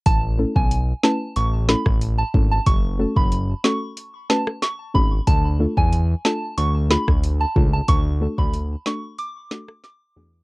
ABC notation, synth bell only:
X:1
M:4/4
L:1/16
Q:1/4=92
K:A
V:1 name="Synth bell"
a z2 g2 z a2 c' z b z2 a z a | c' z2 b2 z c'2 z2 a z c' z b z | a z2 g2 z a2 c' z b z2 a z a | c' z2 b2 z c'2 d'3 z d'3 z |]